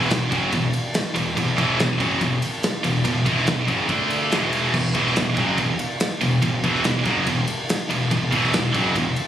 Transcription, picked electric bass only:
0.11 E1
0.32 F#1
0.53 E1
1.15 E1
1.37 E1
1.58 E1
1.78 E1
2.00 F#1
2.21 E1
2.83 E1
3.05 E1
3.26 E1
3.47 E1
3.69 F#1
3.89 D2
4.31 E1
4.74 E1
4.95 E1
5.16 E1
5.37 F#1
5.58 E1
6.21 E1
6.43 E1
6.64 E1
6.85 E1
7.06 F#1
7.27 E1
7.90 E1
8.11 E1
8.32 E1
8.53 E1
8.75 F#1
8.96 E1

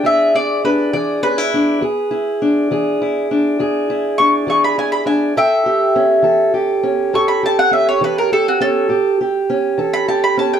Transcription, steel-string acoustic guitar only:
Already playing: D4 E4
0.04 E2 G#4
0.35 E4
0.64 D4
0.93 E3 G#4
1.23 C#4
1.38 E4
1.54 D4
1.81 E2 G#4
2.11 E4
2.42 D4
2.71 E3 G#4
3.02 E4
3.31 D4
3.59 E2 G#4
3.90 E4
4.20 D4
4.47 E3 G#4
4.78 E4
5.06 D4
5.37 A2 A4
5.66 G4
5.96 C#4
6.22 E3 A4
6.54 G4
6.83 C#4
7.13 A2 A4
7.43 G4
7.71 C#4
8.01 E3 A4
8.32 G4
8.60 C#4
8.89 A2 G4
9.21 G4
9.50 C#4
9.78 E3 A4
10.08 G4
10.37 C#4

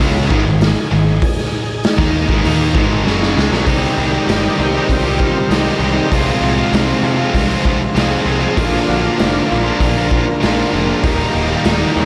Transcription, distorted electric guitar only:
0.00 C#3 G#3 C#4
0.30 G#2 D#3
0.44 G#2 D#3
0.91 G#2 D#3
1.98 D#3 A#3 D#4
2.28 G#2 D#3
2.44 D#3 A#3 D#4
2.74 G#2 D#3 G#3
3.05 F#2 C#3 F#3
3.34 C#3 G#3
3.51 B2 F#3
3.66 C3 G3 C4 D#4 G4
4.13 C4 D#4 G4
4.28 C3 G3 C4 D#4 G4
4.59 muted distorted electric guitar stroke
4.74 C4 D#4 G4
5.05 C4 D#4 G4
5.20 G3 C4 D#4 G4
5.37 muted distorted electric guitar stroke
5.51 C3 G3 C4 D#4 G4
5.81 G3 C4 D#4 G4
5.96 C4 D#4 G4
6.11 F2 C3 F3 G#3 C4 F4
6.57 F3 G#3 C4 F4
6.72 F2 C3 F3 G#3 C4 F4
7.03 muted distorted electric guitar stroke
7.18 F3 G#3 C4 F4
7.48 F3 G#3 C4 F4
7.64 F3 G#3 C4 F4
7.81 muted distorted electric guitar stroke
7.95 F2 C3 F3 G#3 C4 F4
8.26 F3 G#3 C4 F4
8.41 F3 G#3 C4 F4
8.56 A#2 F3 A#3 D4 F4
9.03 A#3 D4 F4
9.18 A#2 F3 A#3 D4 F4
9.50 muted distorted electric guitar stroke
9.64 A#3 D4 F4
9.95 A#3 D4 F4
10.10 F3 A#3 D4 F4
10.27 muted distorted electric guitar stroke
10.40 A#2 F3 A#3 D4 F4
10.71 F3 A#3 D4 F4
10.86 A#3 D4 F4
11.02 D#2 A#2 D#3 G3 A#3 D#4
11.49 D#3 G3 A#3 D#4
11.64 D#2 A#2 D#3 G3 A#3 D#4
11.95 muted distorted electric guitar stroke

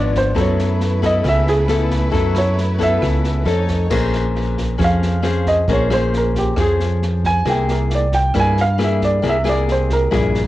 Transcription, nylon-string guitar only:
Already playing: G#2 F3 B3 D4
0.34 F#3 B3 E4 A4
1.02 B3 E4 A4
1.25 C#3
1.68 B3 E4 A4
2.11 F#3 B3 E4 A4
2.79 B3 E4 A4
3.01 C#3
3.45 C#4 D#4 A4
3.90 A#3 C#4 G#4 C5
4.78 F3 C#4 G#4 C5
5.22 C#4 G#4 C5
5.69 A#3 C#4 G#4 C5
5.90 C#4 G#4 C5
6.56 F3 C#4 G#4 C5
7.45 C3 A#3 E4 G#4
8.34 G2 A#3 E4 G#4
8.78 A#3 E4 G#4
9.22 C3 A#3 E4 G#4
9.44 A#3 E4 G#4
10.11 G2 A#3 E4 G#4

